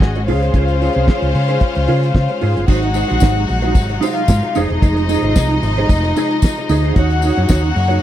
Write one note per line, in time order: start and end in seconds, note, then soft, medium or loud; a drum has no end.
0.00 0.29 G#1 medium
0.00 0.24 D#3 medium
0.00 0.24 G#3 medium
0.00 2.64 G#3 medium
0.00 0.26 C#4 medium
0.00 0.24 F#4 medium
0.00 0.26 F#4 medium
0.00 0.24 D#5 medium
0.00 muted clean electric guitar stroke medium
0.00 kick loud
0.00 snare medium
0.15 muted clean electric guitar stroke soft
0.15 closed hi-hat soft
0.26 0.50 C#2 medium
0.26 2.66 C#3 medium
0.26 2.64 C#4 medium
0.26 2.66 F4 medium
0.26 0.43 F4 medium
0.26 0.42 G#4 medium
0.26 2.64 C5 medium
0.26 2.66 C5 medium
0.26 2.64 F5 medium
0.26 open hi-hat medium
0.30 0.41 C5 medium
0.42 0.54 F4 medium
0.42 0.55 G#4 medium
0.42 0.56 C5 medium
0.42 closed hi-hat soft
0.54 0.88 C#2 loud
0.54 0.73 F4 medium
0.54 0.69 G#4 medium
0.54 0.68 C5 medium
0.54 kick loud
0.54 closed hi-hat medium
0.68 muted clean electric guitar stroke soft
0.68 closed hi-hat soft
0.82 0.95 F4 medium
0.82 0.95 G#4 medium
0.82 0.95 C5 medium
0.82 open hi-hat medium
0.95 1.06 C2 medium
0.95 1.07 F4 soft
0.95 1.08 G#4 medium
0.95 1.09 C5 medium
0.95 closed hi-hat soft
1.08 1.27 F4 medium
1.08 1.23 G#4 medium
1.08 1.21 C5 medium
1.08 kick loud
1.08 snare loud
1.22 1.32 C#2 medium
1.22 muted clean electric guitar stroke soft
1.22 closed hi-hat soft
1.35 1.57 C#3 loud
1.35 muted clean electric guitar stroke soft
1.35 open hi-hat medium
1.48 1.61 F4 soft
1.48 1.62 G#4 medium
1.48 1.62 C5 medium
1.48 closed hi-hat soft
1.60 muted clean electric guitar stroke soft
1.60 kick loud
1.60 closed hi-hat medium
1.75 1.86 C#2 medium
1.75 muted clean electric guitar stroke soft
1.75 closed hi-hat soft
1.88 2.11 C#3 loud
1.88 2.07 F4 medium
1.88 2.02 G#4 medium
1.88 2.01 C5 medium
1.88 open hi-hat medium
2.02 muted clean electric guitar stroke soft
2.02 closed hi-hat soft
2.14 2.27 C#3 medium
2.14 muted clean electric guitar stroke soft
2.14 kick loud
2.14 snare loud
2.29 muted clean electric guitar stroke soft
2.29 closed hi-hat soft
2.41 2.54 G#2 medium
2.41 2.56 F4 medium
2.41 2.55 G#4 medium
2.41 2.54 C5 loud
2.41 open hi-hat medium
2.55 2.67 G1 medium
2.55 2.67 F4 medium
2.55 2.68 G#4 medium
2.55 2.68 C5 medium
2.55 closed hi-hat soft
2.67 3.02 G#1 loud
2.67 6.92 C3 medium
2.67 4.54 F#3 medium
2.67 6.92 G#3 medium
2.67 2.87 D#4 medium
2.67 8.03 D#4 medium
2.67 3.99 F#4 medium
2.67 2.82 F#4 medium
2.67 2.81 C5 medium
2.67 3.99 F#5 medium
2.67 kick loud
2.67 crash loud
2.67 tambourine soft
2.82 muted clean electric guitar stroke soft
2.82 closed hi-hat soft
2.94 3.09 D#4 medium
2.94 3.09 F#4 medium
2.94 3.07 C5 medium
2.94 open hi-hat medium
2.94 tambourine medium
3.08 3.21 A#1 medium
3.08 3.19 D#4 medium
3.08 3.21 F#4 medium
3.08 3.22 C5 medium
3.08 closed hi-hat soft
3.20 3.44 G#1 medium
3.20 3.40 D#4 medium
3.20 3.36 F#4 medium
3.20 3.34 C5 medium
3.20 kick loud
3.20 snare loud
3.20 tambourine medium
3.36 muted clean electric guitar stroke soft
3.36 closed hi-hat soft
3.47 3.75 A#1 medium
3.47 muted clean electric guitar stroke soft
3.47 open hi-hat medium
3.62 3.74 D#4 soft
3.62 3.75 F#4 medium
3.62 3.75 C5 medium
3.62 closed hi-hat medium
3.75 3.97 G#1 loud
3.75 muted clean electric guitar stroke soft
3.75 kick loud
3.75 closed hi-hat medium
3.75 tambourine medium
3.89 muted clean electric guitar stroke soft
3.89 closed hi-hat soft
4.01 4.20 D#4 medium
4.01 4.55 F4 medium
4.01 4.16 F#4 medium
4.01 4.15 C5 loud
4.01 4.55 F5 medium
4.01 open hi-hat medium
4.01 tambourine medium
4.16 muted clean electric guitar stroke soft
4.16 closed hi-hat soft
4.28 4.40 G#2 loud
4.28 muted clean electric guitar stroke soft
4.28 kick loud
4.28 snare loud
4.28 tambourine medium
4.42 muted clean electric guitar stroke soft
4.42 closed hi-hat soft
4.55 4.68 F1 medium
4.55 6.93 F3 medium
4.55 4.71 D#4 medium
4.55 6.93 D#4 medium
4.55 4.69 G#4 medium
4.55 4.68 C5 loud
4.55 6.93 D#5 loud
4.55 open hi-hat medium
4.55 tambourine soft
4.70 4.80 E1 medium
4.70 4.80 D#4 soft
4.70 4.81 G#4 medium
4.70 4.81 C5 medium
4.70 closed hi-hat soft
4.81 5.16 F1 loud
4.81 5.00 D#4 medium
4.81 4.97 G#4 loud
4.81 4.95 C5 loud
4.81 kick loud
4.81 closed hi-hat medium
4.81 tambourine soft
4.96 muted clean electric guitar stroke soft
4.96 closed hi-hat soft
5.09 5.24 D#4 medium
5.09 5.23 G#4 medium
5.09 5.22 C5 medium
5.09 open hi-hat medium
5.09 tambourine medium
5.22 5.33 G#1 medium
5.22 5.33 D#4 medium
5.22 5.35 G#4 medium
5.22 5.36 C5 medium
5.22 closed hi-hat soft
5.34 5.58 C2 medium
5.34 5.54 D#4 medium
5.34 5.49 G#4 medium
5.34 5.48 C5 medium
5.34 kick loud
5.34 snare loud
5.34 tambourine medium
5.49 muted clean electric guitar stroke medium
5.49 closed hi-hat soft
5.62 5.84 G#1 medium
5.62 muted clean electric guitar stroke soft
5.62 open hi-hat medium
5.62 tambourine soft
5.77 5.88 D#4 medium
5.77 5.88 G#4 medium
5.77 5.88 C5 medium
5.77 closed hi-hat soft
5.89 6.11 F1 loud
5.89 muted clean electric guitar stroke medium
5.89 kick loud
5.89 closed hi-hat medium
5.89 tambourine medium
6.04 muted clean electric guitar stroke soft
6.04 closed hi-hat soft
6.16 6.35 D#4 medium
6.16 6.30 G#4 medium
6.16 6.29 C5 medium
6.16 open hi-hat medium
6.16 tambourine medium
6.30 muted clean electric guitar stroke soft
6.30 closed hi-hat soft
6.42 muted clean electric guitar stroke soft
6.42 kick loud
6.42 snare loud
6.42 tambourine medium
6.57 muted clean electric guitar stroke soft
6.57 closed hi-hat soft
6.69 6.91 D2 medium
6.69 6.85 D#4 medium
6.69 6.84 G#4 medium
6.69 6.83 C5 medium
6.69 open hi-hat medium
6.69 tambourine medium
6.84 6.96 D#4 medium
6.84 6.97 G#4 medium
6.84 6.97 C5 medium
6.84 closed hi-hat soft
6.95 7.29 D#2 loud
6.95 8.03 C#3 medium
6.95 8.03 F#3 medium
6.95 8.03 A#3 medium
6.95 7.15 D#4 loud
6.95 8.03 F#4 medium
6.95 7.11 F#4 medium
6.95 7.10 C#5 loud
6.95 8.03 F#5 loud
6.95 kick loud
6.95 closed hi-hat medium
7.10 muted clean electric guitar stroke soft
7.10 closed hi-hat medium
7.22 7.38 D#4 medium
7.22 7.37 F#4 medium
7.22 7.36 C#5 medium
7.22 open hi-hat medium
7.22 tambourine medium
7.37 7.47 F#2 medium
7.37 7.47 D#4 medium
7.37 7.49 F#4 medium
7.37 7.49 C#5 medium
7.37 closed hi-hat medium
7.49 7.71 D#2 medium
7.49 7.68 D#4 medium
7.49 7.63 F#4 medium
7.49 7.62 C#5 medium
7.49 kick loud
7.49 snare loud
7.49 tambourine loud
7.63 muted clean electric guitar stroke medium
7.63 closed hi-hat soft
7.75 7.98 F#2 medium
7.75 muted clean electric guitar stroke soft
7.75 open hi-hat medium
7.88 8.00 D#4 medium
7.88 8.00 F#4 medium
7.88 8.01 C#5 medium
7.88 closed hi-hat soft